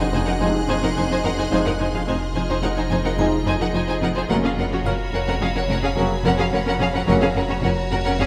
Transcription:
Already playing: F1 G#4 D#5 F#5 G#5 C6 F#6, impact
0.13 F1 F2 D#4 C5 G#5
0.26 F2 D#4 A#4 F#5
0.40 F1 F2 C3 F3 G#3 D#4 C5 G#5
0.68 F1 F2 D#4 C5 G#5
0.82 F2 D#4 A#4 F#5
0.96 F1 F2 D#4 C5 G#5
1.10 F2 D#4 C5 G#5
1.24 F1 F2 D#4 A#4 F#5
1.37 F2 D#4 C5 G#5
1.50 F1 F2 C3 F3 G#3 D#4 F4 G#4 C5 D#5 G#5
1.65 F2 D#4 A#4 F#5
1.79 F1 F2 D#4 C5 G#5
1.93 F2 D#4 G#4 F5
2.07 F1 F2 D#4 C5 G#5
2.26 F6
2.35 F1 F2 D#4 C5 G#5
2.49 F2 D#4 C5 G#5
2.62 F1 F2 D#4 A#4 F#5
2.76 F2 D#4 C5 G#5
2.90 F1 F2 D#4 C5 G#5
3.04 F2 D#4 A#4 F#5
3.17 F1 F2 C3 F3 G#3 D#4 G#4 C5 G#5 A#5
3.45 F1 F2 D#4 C5 G#5
3.60 F2 D#4 A#4 F#5
3.73 F1 F2 D#4 C5 G#5
3.88 F2 D#4 C5 G#5
4.01 F1 F2 D#4 A#4 F#5
4.14 F2 D#4 C5 G#5
4.29 F1 F2 C#3 F#3 A#3 C#4 F#4 A#4 C#5 F#5 A#5 B5
4.43 F2 C#4 G#4 F5
4.56 F1 F2 C#4 A#4 F#5
4.71 F2 C#4 F#4 C#5
4.84 F1 F2 C#4 A#4 F5 F#5 F6
5.12 F1 F2 C#4 A#4 F#5
5.27 F2 C#4 A#4 F#5
5.40 F1 F2 C#4 G#4 F5
5.55 F2 C#4 A#4 F#5
5.68 F1 F2 C#4 A#4 F#5
5.82 F2 C#4 G#4 F5
5.95 F1 F2 C#3 F#3 A#3 C#4 A#4 F#5
6.24 F1 F2 C#4 A#4 F#5
6.38 F2 C#4 G#4 F5
6.52 F1 F2 C#4 A#4 F#5
6.66 F2 C#4 A#4 F#5
6.79 F1 F2 C#4 G#4 F5
6.93 F2 C#4 A#4 F#5
7.06 F1 F2 C#3 F#3 A#3 C#4 F#4 A#4 C#5 F#5
7.21 F2 C#4 G#4 F5
7.35 F1 F2 C#4 A#4 F#5
7.49 F2 C#4 F#4 C#5
7.63 F1 F2 C#4 A#4 F#5
7.82 A#5
7.91 F1 F2 C#4 A#4 F#5
8.04 F2 C#4 A#4 F#5
8.18 F1 F2 C#4 G#4 F5

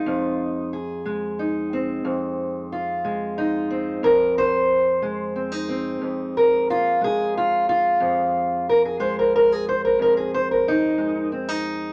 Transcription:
Already playing: G#3 C4 D#4 F4
0.06 F2
0.73 G#4
1.05 G#3
1.39 D#4
1.73 C4
2.05 F2
2.72 F4
3.05 G#3
3.38 D#4
3.70 C4
4.03 F2 A#4
4.38 C5
5.02 G#3
5.36 C4
5.52 D#4
5.69 C4
6.01 F2
6.37 A#4
6.70 F4
7.01 G#3 G#4
7.37 F4
7.69 F4
8.00 F2
8.69 A#4
8.85 G#4
9.00 G#3 C5
9.19 A#4
9.36 A#4
9.52 G#4
9.69 C5
9.85 A#4
9.99 F2 A#4
10.17 G#4
10.34 C5
10.51 A#4
10.68 D#4
10.98 G#3
11.32 C4
11.49 D#4

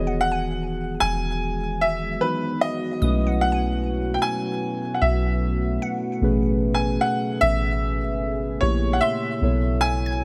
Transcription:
Already playing: E1 D#3 E3 F#3 G#3 B3 F#4 G#4 C#5 D#5
0.07 F#5
0.21 F#5
0.32 G#5
1.00 E1 G#5
1.81 E5
2.21 E3 B3 D#4 F#4 B4
2.61 D#5
3.01 B1 B2 A3 B3 C#4 E4 B4 D#6
3.27 F#5
3.41 F#5
3.52 G#5
4.14 G5
4.22 G#5
4.94 F#5
5.02 B1 E5
5.82 F#5
6.21 A1 B2 C#3 A3 C#4 G#4 B4
6.75 G#5
7.01 F#5
7.41 A1 E5
8.02 G#1
8.61 A#1 A#2 E3 A#3 E4 G4 C#5
8.93 F#5
9.01 E5 C6
9.41 B1 B2 A3 B3 E4 F#4 A4 C#5
9.81 G#5 E6
10.06 G#6

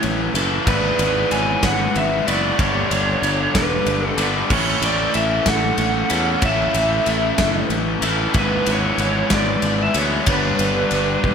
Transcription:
Already playing: A2 E3 A3 C#4 E4
0.03 A1 C#4 B4, ride
0.34 F#1 A2 E3 A3 C#4 E4 A4, ride
0.66 G#1 G#2 E3 G#3 B3 E4 B4 D5, kick, ride
0.99 G#1 G#3, ride
1.31 G#1 B3 C#5 G#5, ride
1.63 G#1 G#3 B4 F#5, kick, snare, ride
1.95 G#1 B3 E5, ride
2.27 F#1 G#2 E3 G#3 B3 E4 B4 D5 C#6, ride
2.58 G1 G2 D3 G3 B3 D4 C#5, kick, ride
2.91 G1 G3 D4, ride
3.22 G1 D4 A4, ride
3.54 E1 G3 B4, kick, snare, ride
3.86 G1 D4 B4, ride
4.05 A4
4.17 G1 G2 D3 G3 B3 D4 B4, ride
4.50 A1 A2 E3 A3 C#4 E4 C#5 C#6, kick, crash
4.82 A1 A3 D5, ride
5.14 A1 C#4 B4 E5, ride
5.46 A1 A3 A4 F#5, kick, snare, ride
5.78 A1 C#4, ride
6.10 E2 A2 E3 A3 C#4 E4 A4 C#5, ride
6.42 A1 A2 E3 A3 C#4 E5, kick, ride
6.46 E4
6.74 A1 A3 E5, ride
7.06 A1 C#4 A4, ride
7.38 F#1 A3, kick, snare, ride
7.70 A1 C#4 B4, ride
8.02 A1 E3 A3 C#4 E4 A4, ride
8.06 A2
8.34 G#1 G#2 E3 G#3 B3 D4 E4, kick, ride
8.39 B4
8.66 G#1 G#3, ride
8.71 C#5
8.98 G#1 B3 C#5, ride
9.30 G#1 G#3 B4 D5, kick, snare, ride
9.62 G#1 B3, ride
9.83 E5
9.94 D2 G#2 E3 G#3 B3 E4 G#4 C#5, ride
10.26 G1 G2 D3 G3 B3 B4, kick, ride
10.30 D4
10.59 G1 G3 D5, ride
10.91 G1 B3 A4, ride
11.24 E1 G3, kick

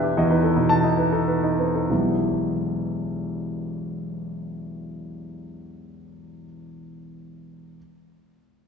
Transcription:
Already playing: E2 B2 D4 G4 B4 E5 G5
0.04 G4
0.17 E2 D#5
0.30 D#4 B4
0.43 A4
0.56 B2 D#4
0.69 A5
0.84 D#4 D#5
0.98 B4
1.12 D#4 A4
1.28 B4
1.43 D#4 D#5
1.59 C4 B4
1.75 D#4 A4
1.90 E1 B1 E3 G3 B3 E4

